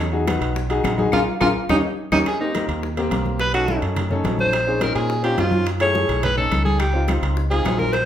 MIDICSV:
0, 0, Header, 1, 6, 480
1, 0, Start_track
1, 0, Key_signature, -4, "major"
1, 0, Tempo, 283688
1, 1910, Time_signature, 4, 2, 24, 8
1, 13626, End_track
2, 0, Start_track
2, 0, Title_t, "Alto saxophone"
2, 0, Program_c, 0, 65
2, 3845, Note_on_c, 0, 68, 88
2, 4057, Note_off_c, 0, 68, 0
2, 4067, Note_on_c, 0, 63, 69
2, 4515, Note_off_c, 0, 63, 0
2, 5758, Note_on_c, 0, 71, 94
2, 5979, Note_off_c, 0, 71, 0
2, 5993, Note_on_c, 0, 66, 89
2, 6440, Note_off_c, 0, 66, 0
2, 7448, Note_on_c, 0, 72, 88
2, 8162, Note_on_c, 0, 70, 87
2, 8188, Note_off_c, 0, 72, 0
2, 8372, Note_off_c, 0, 70, 0
2, 8383, Note_on_c, 0, 68, 83
2, 8834, Note_off_c, 0, 68, 0
2, 8868, Note_on_c, 0, 67, 85
2, 9124, Note_on_c, 0, 65, 88
2, 9150, Note_off_c, 0, 67, 0
2, 9599, Note_off_c, 0, 65, 0
2, 9839, Note_on_c, 0, 73, 107
2, 10559, Note_on_c, 0, 71, 89
2, 10585, Note_off_c, 0, 73, 0
2, 10778, Note_off_c, 0, 71, 0
2, 10788, Note_on_c, 0, 69, 93
2, 11236, Note_off_c, 0, 69, 0
2, 11256, Note_on_c, 0, 68, 95
2, 11496, Note_on_c, 0, 67, 88
2, 11521, Note_off_c, 0, 68, 0
2, 11984, Note_off_c, 0, 67, 0
2, 12699, Note_on_c, 0, 68, 98
2, 13187, Note_on_c, 0, 70, 91
2, 13212, Note_off_c, 0, 68, 0
2, 13413, Note_on_c, 0, 72, 102
2, 13439, Note_off_c, 0, 70, 0
2, 13626, Note_off_c, 0, 72, 0
2, 13626, End_track
3, 0, Start_track
3, 0, Title_t, "Tenor saxophone"
3, 0, Program_c, 1, 66
3, 1915, Note_on_c, 1, 65, 104
3, 2029, Note_off_c, 1, 65, 0
3, 2388, Note_on_c, 1, 65, 98
3, 2504, Note_off_c, 1, 65, 0
3, 2875, Note_on_c, 1, 63, 93
3, 2989, Note_off_c, 1, 63, 0
3, 3593, Note_on_c, 1, 63, 98
3, 3708, Note_off_c, 1, 63, 0
3, 13626, End_track
4, 0, Start_track
4, 0, Title_t, "Grand piano"
4, 0, Program_c, 2, 0
4, 208, Note_on_c, 2, 63, 90
4, 209, Note_on_c, 2, 66, 80
4, 226, Note_on_c, 2, 68, 99
4, 387, Note_off_c, 2, 63, 0
4, 388, Note_off_c, 2, 66, 0
4, 397, Note_off_c, 2, 68, 0
4, 451, Note_on_c, 2, 63, 85
4, 463, Note_on_c, 2, 66, 78
4, 470, Note_on_c, 2, 71, 92
4, 965, Note_off_c, 2, 63, 0
4, 971, Note_off_c, 2, 66, 0
4, 974, Note_off_c, 2, 71, 0
4, 1178, Note_on_c, 2, 63, 97
4, 1181, Note_on_c, 2, 66, 92
4, 1201, Note_on_c, 2, 68, 106
4, 1520, Note_off_c, 2, 63, 0
4, 1522, Note_off_c, 2, 66, 0
4, 1532, Note_off_c, 2, 68, 0
4, 1656, Note_on_c, 2, 63, 100
4, 1667, Note_on_c, 2, 66, 88
4, 1680, Note_on_c, 2, 68, 113
4, 1831, Note_off_c, 2, 63, 0
4, 1837, Note_off_c, 2, 66, 0
4, 1844, Note_off_c, 2, 68, 0
4, 1904, Note_on_c, 2, 70, 103
4, 1908, Note_on_c, 2, 68, 100
4, 1910, Note_on_c, 2, 65, 98
4, 2060, Note_off_c, 2, 70, 0
4, 2063, Note_off_c, 2, 68, 0
4, 2064, Note_off_c, 2, 65, 0
4, 2372, Note_on_c, 2, 65, 98
4, 2377, Note_on_c, 2, 68, 95
4, 2378, Note_on_c, 2, 70, 104
4, 2533, Note_off_c, 2, 65, 0
4, 2536, Note_off_c, 2, 68, 0
4, 2537, Note_off_c, 2, 70, 0
4, 2874, Note_on_c, 2, 67, 103
4, 2875, Note_on_c, 2, 61, 103
4, 2875, Note_on_c, 2, 63, 105
4, 3026, Note_off_c, 2, 67, 0
4, 3027, Note_off_c, 2, 61, 0
4, 3027, Note_off_c, 2, 63, 0
4, 3594, Note_on_c, 2, 61, 98
4, 3596, Note_on_c, 2, 63, 102
4, 3601, Note_on_c, 2, 67, 99
4, 3747, Note_off_c, 2, 61, 0
4, 3748, Note_off_c, 2, 63, 0
4, 3751, Note_off_c, 2, 67, 0
4, 4068, Note_on_c, 2, 58, 78
4, 4072, Note_on_c, 2, 60, 76
4, 4094, Note_on_c, 2, 67, 83
4, 4238, Note_off_c, 2, 58, 0
4, 4240, Note_off_c, 2, 60, 0
4, 4251, Note_off_c, 2, 67, 0
4, 4309, Note_on_c, 2, 58, 75
4, 4321, Note_on_c, 2, 60, 65
4, 4328, Note_on_c, 2, 67, 80
4, 4815, Note_off_c, 2, 58, 0
4, 4820, Note_off_c, 2, 60, 0
4, 4824, Note_off_c, 2, 67, 0
4, 5028, Note_on_c, 2, 58, 97
4, 5040, Note_on_c, 2, 60, 84
4, 5052, Note_on_c, 2, 67, 103
4, 5703, Note_off_c, 2, 58, 0
4, 5708, Note_off_c, 2, 60, 0
4, 5715, Note_off_c, 2, 67, 0
4, 5976, Note_on_c, 2, 61, 78
4, 5986, Note_on_c, 2, 63, 73
4, 5998, Note_on_c, 2, 69, 88
4, 6153, Note_off_c, 2, 61, 0
4, 6158, Note_off_c, 2, 63, 0
4, 6163, Note_off_c, 2, 69, 0
4, 6233, Note_on_c, 2, 61, 79
4, 6243, Note_on_c, 2, 63, 69
4, 6260, Note_on_c, 2, 69, 86
4, 6737, Note_off_c, 2, 61, 0
4, 6742, Note_off_c, 2, 63, 0
4, 6751, Note_off_c, 2, 69, 0
4, 6946, Note_on_c, 2, 61, 93
4, 6959, Note_on_c, 2, 63, 89
4, 6969, Note_on_c, 2, 69, 98
4, 7622, Note_off_c, 2, 61, 0
4, 7628, Note_off_c, 2, 63, 0
4, 7633, Note_off_c, 2, 69, 0
4, 7900, Note_on_c, 2, 60, 84
4, 7906, Note_on_c, 2, 61, 79
4, 7916, Note_on_c, 2, 63, 77
4, 7924, Note_on_c, 2, 68, 94
4, 8075, Note_off_c, 2, 60, 0
4, 8078, Note_off_c, 2, 61, 0
4, 8083, Note_off_c, 2, 63, 0
4, 8087, Note_off_c, 2, 68, 0
4, 8122, Note_on_c, 2, 60, 77
4, 8138, Note_on_c, 2, 61, 72
4, 8144, Note_on_c, 2, 63, 69
4, 8149, Note_on_c, 2, 70, 86
4, 8642, Note_off_c, 2, 60, 0
4, 8650, Note_off_c, 2, 61, 0
4, 8653, Note_off_c, 2, 63, 0
4, 8655, Note_off_c, 2, 70, 0
4, 8849, Note_on_c, 2, 60, 84
4, 8852, Note_on_c, 2, 61, 72
4, 8859, Note_on_c, 2, 63, 71
4, 8871, Note_on_c, 2, 65, 90
4, 9533, Note_off_c, 2, 60, 0
4, 9534, Note_off_c, 2, 61, 0
4, 9538, Note_off_c, 2, 63, 0
4, 9544, Note_off_c, 2, 65, 0
4, 9807, Note_on_c, 2, 57, 88
4, 9818, Note_on_c, 2, 64, 73
4, 9834, Note_on_c, 2, 68, 88
4, 9988, Note_off_c, 2, 57, 0
4, 9993, Note_off_c, 2, 64, 0
4, 10002, Note_off_c, 2, 68, 0
4, 10059, Note_on_c, 2, 57, 79
4, 10066, Note_on_c, 2, 64, 71
4, 10075, Note_on_c, 2, 68, 91
4, 10546, Note_off_c, 2, 57, 0
4, 10549, Note_off_c, 2, 64, 0
4, 10554, Note_off_c, 2, 68, 0
4, 10774, Note_on_c, 2, 61, 77
4, 10791, Note_on_c, 2, 63, 71
4, 10805, Note_on_c, 2, 69, 85
4, 11455, Note_off_c, 2, 61, 0
4, 11464, Note_off_c, 2, 63, 0
4, 11470, Note_off_c, 2, 69, 0
4, 11736, Note_on_c, 2, 60, 83
4, 11752, Note_on_c, 2, 63, 76
4, 11765, Note_on_c, 2, 65, 90
4, 11912, Note_off_c, 2, 60, 0
4, 11920, Note_off_c, 2, 63, 0
4, 11927, Note_off_c, 2, 65, 0
4, 11984, Note_on_c, 2, 60, 75
4, 11999, Note_on_c, 2, 63, 74
4, 12005, Note_on_c, 2, 65, 79
4, 12492, Note_off_c, 2, 60, 0
4, 12499, Note_off_c, 2, 63, 0
4, 12502, Note_off_c, 2, 65, 0
4, 12702, Note_on_c, 2, 60, 83
4, 12716, Note_on_c, 2, 63, 75
4, 12726, Note_on_c, 2, 65, 86
4, 13378, Note_off_c, 2, 60, 0
4, 13386, Note_off_c, 2, 63, 0
4, 13391, Note_off_c, 2, 65, 0
4, 13626, End_track
5, 0, Start_track
5, 0, Title_t, "Fingered electric bass"
5, 0, Program_c, 3, 33
5, 0, Note_on_c, 3, 40, 97
5, 617, Note_off_c, 3, 40, 0
5, 691, Note_on_c, 3, 35, 92
5, 1370, Note_off_c, 3, 35, 0
5, 1430, Note_on_c, 3, 34, 98
5, 1876, Note_off_c, 3, 34, 0
5, 1894, Note_on_c, 3, 34, 101
5, 2080, Note_off_c, 3, 34, 0
5, 2389, Note_on_c, 3, 34, 95
5, 2568, Note_off_c, 3, 34, 0
5, 2864, Note_on_c, 3, 39, 100
5, 3046, Note_off_c, 3, 39, 0
5, 3585, Note_on_c, 3, 39, 91
5, 3767, Note_off_c, 3, 39, 0
5, 4541, Note_on_c, 3, 39, 85
5, 5216, Note_off_c, 3, 39, 0
5, 5268, Note_on_c, 3, 35, 86
5, 6379, Note_off_c, 3, 35, 0
5, 6465, Note_on_c, 3, 42, 85
5, 7139, Note_off_c, 3, 42, 0
5, 7181, Note_on_c, 3, 34, 91
5, 8295, Note_off_c, 3, 34, 0
5, 8384, Note_on_c, 3, 46, 91
5, 9058, Note_off_c, 3, 46, 0
5, 9104, Note_on_c, 3, 42, 90
5, 10217, Note_off_c, 3, 42, 0
5, 10304, Note_on_c, 3, 35, 88
5, 10978, Note_off_c, 3, 35, 0
5, 11018, Note_on_c, 3, 37, 90
5, 12133, Note_off_c, 3, 37, 0
5, 12223, Note_on_c, 3, 37, 90
5, 12897, Note_off_c, 3, 37, 0
5, 12940, Note_on_c, 3, 34, 88
5, 13626, Note_off_c, 3, 34, 0
5, 13626, End_track
6, 0, Start_track
6, 0, Title_t, "Drums"
6, 0, Note_on_c, 9, 63, 34
6, 161, Note_off_c, 9, 63, 0
6, 237, Note_on_c, 9, 63, 37
6, 406, Note_off_c, 9, 63, 0
6, 464, Note_on_c, 9, 60, 59
6, 464, Note_on_c, 9, 75, 62
6, 467, Note_on_c, 9, 65, 102
6, 472, Note_on_c, 9, 63, 95
6, 633, Note_off_c, 9, 60, 0
6, 633, Note_off_c, 9, 75, 0
6, 637, Note_off_c, 9, 65, 0
6, 641, Note_off_c, 9, 63, 0
6, 705, Note_on_c, 9, 65, 73
6, 709, Note_on_c, 9, 60, 36
6, 712, Note_on_c, 9, 63, 37
6, 874, Note_off_c, 9, 65, 0
6, 878, Note_off_c, 9, 60, 0
6, 881, Note_off_c, 9, 63, 0
6, 943, Note_on_c, 9, 63, 36
6, 952, Note_on_c, 9, 60, 70
6, 1112, Note_off_c, 9, 63, 0
6, 1121, Note_off_c, 9, 60, 0
6, 1178, Note_on_c, 9, 63, 34
6, 1184, Note_on_c, 9, 65, 68
6, 1200, Note_on_c, 9, 60, 34
6, 1348, Note_off_c, 9, 63, 0
6, 1353, Note_off_c, 9, 65, 0
6, 1370, Note_off_c, 9, 60, 0
6, 1418, Note_on_c, 9, 63, 82
6, 1423, Note_on_c, 9, 75, 70
6, 1431, Note_on_c, 9, 60, 34
6, 1431, Note_on_c, 9, 61, 80
6, 1437, Note_on_c, 9, 65, 93
6, 1587, Note_off_c, 9, 63, 0
6, 1592, Note_off_c, 9, 75, 0
6, 1600, Note_off_c, 9, 60, 0
6, 1600, Note_off_c, 9, 61, 0
6, 1606, Note_off_c, 9, 65, 0
6, 1666, Note_on_c, 9, 63, 83
6, 1678, Note_on_c, 9, 60, 34
6, 1835, Note_off_c, 9, 63, 0
6, 1847, Note_off_c, 9, 60, 0
6, 1896, Note_on_c, 9, 75, 98
6, 1912, Note_on_c, 9, 61, 102
6, 1912, Note_on_c, 9, 65, 91
6, 1914, Note_on_c, 9, 63, 101
6, 2066, Note_off_c, 9, 75, 0
6, 2081, Note_off_c, 9, 61, 0
6, 2082, Note_off_c, 9, 65, 0
6, 2083, Note_off_c, 9, 63, 0
6, 2378, Note_on_c, 9, 75, 97
6, 2382, Note_on_c, 9, 65, 99
6, 2389, Note_on_c, 9, 61, 94
6, 2395, Note_on_c, 9, 63, 102
6, 2547, Note_off_c, 9, 75, 0
6, 2551, Note_off_c, 9, 65, 0
6, 2559, Note_off_c, 9, 61, 0
6, 2564, Note_off_c, 9, 63, 0
6, 2866, Note_on_c, 9, 61, 102
6, 2866, Note_on_c, 9, 65, 97
6, 2868, Note_on_c, 9, 75, 99
6, 2876, Note_on_c, 9, 63, 101
6, 3035, Note_off_c, 9, 61, 0
6, 3035, Note_off_c, 9, 65, 0
6, 3037, Note_off_c, 9, 75, 0
6, 3046, Note_off_c, 9, 63, 0
6, 3585, Note_on_c, 9, 61, 99
6, 3586, Note_on_c, 9, 63, 106
6, 3586, Note_on_c, 9, 75, 100
6, 3590, Note_on_c, 9, 65, 95
6, 3754, Note_off_c, 9, 61, 0
6, 3755, Note_off_c, 9, 63, 0
6, 3756, Note_off_c, 9, 75, 0
6, 3759, Note_off_c, 9, 65, 0
6, 3829, Note_on_c, 9, 60, 66
6, 3829, Note_on_c, 9, 65, 83
6, 3998, Note_off_c, 9, 60, 0
6, 3999, Note_off_c, 9, 65, 0
6, 4073, Note_on_c, 9, 63, 31
6, 4242, Note_off_c, 9, 63, 0
6, 4309, Note_on_c, 9, 65, 96
6, 4312, Note_on_c, 9, 60, 58
6, 4326, Note_on_c, 9, 63, 90
6, 4479, Note_off_c, 9, 65, 0
6, 4481, Note_off_c, 9, 60, 0
6, 4496, Note_off_c, 9, 63, 0
6, 4549, Note_on_c, 9, 65, 69
6, 4558, Note_on_c, 9, 60, 32
6, 4567, Note_on_c, 9, 63, 33
6, 4718, Note_off_c, 9, 65, 0
6, 4727, Note_off_c, 9, 60, 0
6, 4736, Note_off_c, 9, 63, 0
6, 4794, Note_on_c, 9, 60, 66
6, 4803, Note_on_c, 9, 63, 34
6, 4963, Note_off_c, 9, 60, 0
6, 4972, Note_off_c, 9, 63, 0
6, 5029, Note_on_c, 9, 60, 33
6, 5031, Note_on_c, 9, 65, 68
6, 5040, Note_on_c, 9, 63, 34
6, 5198, Note_off_c, 9, 60, 0
6, 5200, Note_off_c, 9, 65, 0
6, 5209, Note_off_c, 9, 63, 0
6, 5268, Note_on_c, 9, 65, 88
6, 5273, Note_on_c, 9, 63, 79
6, 5275, Note_on_c, 9, 60, 32
6, 5275, Note_on_c, 9, 61, 80
6, 5437, Note_off_c, 9, 65, 0
6, 5442, Note_off_c, 9, 63, 0
6, 5444, Note_off_c, 9, 60, 0
6, 5444, Note_off_c, 9, 61, 0
6, 5508, Note_on_c, 9, 63, 78
6, 5517, Note_on_c, 9, 60, 32
6, 5677, Note_off_c, 9, 63, 0
6, 5686, Note_off_c, 9, 60, 0
6, 5745, Note_on_c, 9, 60, 68
6, 5746, Note_on_c, 9, 65, 63
6, 5750, Note_on_c, 9, 63, 34
6, 5914, Note_off_c, 9, 60, 0
6, 5916, Note_off_c, 9, 65, 0
6, 5919, Note_off_c, 9, 63, 0
6, 5990, Note_on_c, 9, 63, 34
6, 5991, Note_on_c, 9, 65, 90
6, 6159, Note_off_c, 9, 63, 0
6, 6161, Note_off_c, 9, 65, 0
6, 6229, Note_on_c, 9, 60, 57
6, 6233, Note_on_c, 9, 63, 88
6, 6399, Note_off_c, 9, 60, 0
6, 6402, Note_off_c, 9, 63, 0
6, 6467, Note_on_c, 9, 63, 34
6, 6468, Note_on_c, 9, 60, 33
6, 6468, Note_on_c, 9, 65, 69
6, 6636, Note_off_c, 9, 63, 0
6, 6637, Note_off_c, 9, 60, 0
6, 6637, Note_off_c, 9, 65, 0
6, 6708, Note_on_c, 9, 60, 66
6, 6708, Note_on_c, 9, 63, 33
6, 6708, Note_on_c, 9, 64, 78
6, 6714, Note_on_c, 9, 65, 86
6, 6877, Note_off_c, 9, 60, 0
6, 6877, Note_off_c, 9, 63, 0
6, 6877, Note_off_c, 9, 64, 0
6, 6883, Note_off_c, 9, 65, 0
6, 6945, Note_on_c, 9, 63, 31
6, 6945, Note_on_c, 9, 64, 72
6, 6952, Note_on_c, 9, 60, 33
6, 7114, Note_off_c, 9, 63, 0
6, 7114, Note_off_c, 9, 64, 0
6, 7121, Note_off_c, 9, 60, 0
6, 7176, Note_on_c, 9, 63, 83
6, 7188, Note_on_c, 9, 65, 68
6, 7188, Note_on_c, 9, 66, 70
6, 7189, Note_on_c, 9, 60, 33
6, 7189, Note_on_c, 9, 61, 82
6, 7345, Note_off_c, 9, 63, 0
6, 7357, Note_off_c, 9, 65, 0
6, 7357, Note_off_c, 9, 66, 0
6, 7358, Note_off_c, 9, 60, 0
6, 7358, Note_off_c, 9, 61, 0
6, 7423, Note_on_c, 9, 63, 84
6, 7431, Note_on_c, 9, 60, 33
6, 7592, Note_off_c, 9, 63, 0
6, 7600, Note_off_c, 9, 60, 0
6, 7667, Note_on_c, 9, 65, 86
6, 7671, Note_on_c, 9, 60, 70
6, 7837, Note_off_c, 9, 65, 0
6, 7841, Note_off_c, 9, 60, 0
6, 7908, Note_on_c, 9, 63, 34
6, 8077, Note_off_c, 9, 63, 0
6, 8140, Note_on_c, 9, 63, 90
6, 8141, Note_on_c, 9, 65, 100
6, 8150, Note_on_c, 9, 60, 60
6, 8309, Note_off_c, 9, 63, 0
6, 8310, Note_off_c, 9, 65, 0
6, 8319, Note_off_c, 9, 60, 0
6, 8382, Note_on_c, 9, 63, 34
6, 8384, Note_on_c, 9, 65, 71
6, 8395, Note_on_c, 9, 60, 34
6, 8551, Note_off_c, 9, 63, 0
6, 8554, Note_off_c, 9, 65, 0
6, 8565, Note_off_c, 9, 60, 0
6, 8626, Note_on_c, 9, 60, 65
6, 8637, Note_on_c, 9, 63, 34
6, 8795, Note_off_c, 9, 60, 0
6, 8806, Note_off_c, 9, 63, 0
6, 8864, Note_on_c, 9, 65, 71
6, 8865, Note_on_c, 9, 63, 32
6, 9033, Note_off_c, 9, 65, 0
6, 9034, Note_off_c, 9, 63, 0
6, 9096, Note_on_c, 9, 63, 83
6, 9102, Note_on_c, 9, 65, 90
6, 9102, Note_on_c, 9, 66, 70
6, 9115, Note_on_c, 9, 60, 33
6, 9115, Note_on_c, 9, 61, 80
6, 9266, Note_off_c, 9, 63, 0
6, 9271, Note_off_c, 9, 65, 0
6, 9271, Note_off_c, 9, 66, 0
6, 9284, Note_off_c, 9, 60, 0
6, 9284, Note_off_c, 9, 61, 0
6, 9329, Note_on_c, 9, 63, 85
6, 9352, Note_on_c, 9, 60, 35
6, 9498, Note_off_c, 9, 63, 0
6, 9521, Note_off_c, 9, 60, 0
6, 9578, Note_on_c, 9, 63, 36
6, 9583, Note_on_c, 9, 65, 66
6, 9588, Note_on_c, 9, 60, 67
6, 9747, Note_off_c, 9, 63, 0
6, 9752, Note_off_c, 9, 65, 0
6, 9757, Note_off_c, 9, 60, 0
6, 9816, Note_on_c, 9, 63, 34
6, 9816, Note_on_c, 9, 65, 87
6, 9985, Note_off_c, 9, 63, 0
6, 9985, Note_off_c, 9, 65, 0
6, 10064, Note_on_c, 9, 60, 59
6, 10070, Note_on_c, 9, 63, 92
6, 10233, Note_off_c, 9, 60, 0
6, 10240, Note_off_c, 9, 63, 0
6, 10305, Note_on_c, 9, 65, 70
6, 10306, Note_on_c, 9, 63, 35
6, 10310, Note_on_c, 9, 60, 33
6, 10475, Note_off_c, 9, 63, 0
6, 10475, Note_off_c, 9, 65, 0
6, 10479, Note_off_c, 9, 60, 0
6, 10543, Note_on_c, 9, 65, 88
6, 10546, Note_on_c, 9, 60, 64
6, 10546, Note_on_c, 9, 63, 35
6, 10546, Note_on_c, 9, 64, 81
6, 10712, Note_off_c, 9, 65, 0
6, 10715, Note_off_c, 9, 60, 0
6, 10715, Note_off_c, 9, 63, 0
6, 10715, Note_off_c, 9, 64, 0
6, 10789, Note_on_c, 9, 63, 33
6, 10789, Note_on_c, 9, 64, 64
6, 10796, Note_on_c, 9, 60, 31
6, 10958, Note_off_c, 9, 63, 0
6, 10958, Note_off_c, 9, 64, 0
6, 10966, Note_off_c, 9, 60, 0
6, 11024, Note_on_c, 9, 65, 70
6, 11029, Note_on_c, 9, 60, 33
6, 11029, Note_on_c, 9, 61, 81
6, 11030, Note_on_c, 9, 63, 78
6, 11193, Note_off_c, 9, 65, 0
6, 11198, Note_off_c, 9, 60, 0
6, 11198, Note_off_c, 9, 61, 0
6, 11199, Note_off_c, 9, 63, 0
6, 11269, Note_on_c, 9, 63, 80
6, 11271, Note_on_c, 9, 60, 33
6, 11439, Note_off_c, 9, 63, 0
6, 11440, Note_off_c, 9, 60, 0
6, 11499, Note_on_c, 9, 65, 88
6, 11504, Note_on_c, 9, 60, 70
6, 11514, Note_on_c, 9, 75, 65
6, 11668, Note_off_c, 9, 65, 0
6, 11673, Note_off_c, 9, 60, 0
6, 11683, Note_off_c, 9, 75, 0
6, 11753, Note_on_c, 9, 63, 35
6, 11923, Note_off_c, 9, 63, 0
6, 11979, Note_on_c, 9, 60, 58
6, 11987, Note_on_c, 9, 65, 94
6, 11989, Note_on_c, 9, 75, 65
6, 11998, Note_on_c, 9, 63, 97
6, 12148, Note_off_c, 9, 60, 0
6, 12156, Note_off_c, 9, 65, 0
6, 12158, Note_off_c, 9, 75, 0
6, 12167, Note_off_c, 9, 63, 0
6, 12229, Note_on_c, 9, 60, 33
6, 12233, Note_on_c, 9, 65, 76
6, 12241, Note_on_c, 9, 63, 34
6, 12398, Note_off_c, 9, 60, 0
6, 12403, Note_off_c, 9, 65, 0
6, 12410, Note_off_c, 9, 63, 0
6, 12469, Note_on_c, 9, 60, 68
6, 12482, Note_on_c, 9, 63, 33
6, 12638, Note_off_c, 9, 60, 0
6, 12651, Note_off_c, 9, 63, 0
6, 12705, Note_on_c, 9, 60, 33
6, 12714, Note_on_c, 9, 65, 71
6, 12719, Note_on_c, 9, 63, 36
6, 12874, Note_off_c, 9, 60, 0
6, 12884, Note_off_c, 9, 65, 0
6, 12888, Note_off_c, 9, 63, 0
6, 12947, Note_on_c, 9, 60, 33
6, 12947, Note_on_c, 9, 61, 83
6, 12954, Note_on_c, 9, 75, 71
6, 12956, Note_on_c, 9, 65, 96
6, 12956, Note_on_c, 9, 66, 71
6, 12961, Note_on_c, 9, 63, 84
6, 13116, Note_off_c, 9, 60, 0
6, 13116, Note_off_c, 9, 61, 0
6, 13123, Note_off_c, 9, 75, 0
6, 13126, Note_off_c, 9, 65, 0
6, 13126, Note_off_c, 9, 66, 0
6, 13130, Note_off_c, 9, 63, 0
6, 13185, Note_on_c, 9, 60, 35
6, 13199, Note_on_c, 9, 63, 83
6, 13354, Note_off_c, 9, 60, 0
6, 13368, Note_off_c, 9, 63, 0
6, 13422, Note_on_c, 9, 60, 70
6, 13436, Note_on_c, 9, 65, 67
6, 13445, Note_on_c, 9, 63, 32
6, 13591, Note_off_c, 9, 60, 0
6, 13605, Note_off_c, 9, 65, 0
6, 13615, Note_off_c, 9, 63, 0
6, 13626, End_track
0, 0, End_of_file